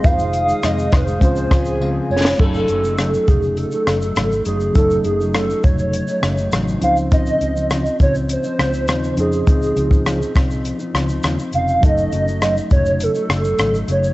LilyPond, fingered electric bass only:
\new Staff \with { instrumentName = "Fingered electric bass" } { \clef bass \time 4/4 \key ges \lydian \tempo 4 = 102 f,,4 f,8 f,,8 des,8 des,4 f,,8 | ges,,8 ges,,4 f,,8. r16 ges,,8 aes,,8 ges,,8 | ges,,8 ges,,4 f,,8. r16 ges,,8 a,,8 des,8~ | des,8 des,4 des,8. r16 des,8 ees,8 f,8 |
des,8 des,4 c,8. r16 des,8 ees,16 r16 f,,8 | ges,,8 ges,,4 f,,8. r16 ges,,8 aes,,8 ges,,8 | }